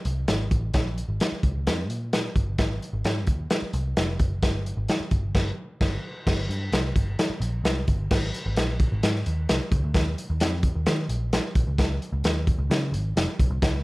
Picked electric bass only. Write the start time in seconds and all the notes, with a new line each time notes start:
0.05 C2
0.28 G#1
0.51 A1
0.74 A#1
1.08 G#1
1.32 muted picked electric bass stroke
1.43 C#2
1.67 F2
1.89 A#2
2.35 G1
2.58 G#1
2.93 G#1
3.05 G#2
3.27 D#2
3.62 muted picked electric bass stroke
3.74 C2
3.97 F1
4.19 F#1
4.43 G1
4.77 G#1
5.00 muted picked electric bass stroke
5.11 G1
5.35 G1
5.81 G1
6.27 G1
6.49 G2
6.72 C2
6.95 G1
7.30 muted picked electric bass stroke
7.40 A#1
7.64 C2
7.88 G1
8.11 G#1
8.46 G#1
8.57 A#1
8.92 G#1
9.03 G#2
9.27 D#2
9.50 C2
9.71 C#2
9.84 D2
9.95 D#2
10.30 D#2
10.41 F2
10.75 D#2
10.87 D#3
11.09 A#1
11.55 A#1
11.67 C#2
11.78 C#2
12.12 C#2
12.24 D#2
12.58 C#2
12.70 C#3
12.92 G#1
13.16 F1
13.39 B1
13.50 C2
13.62 C#2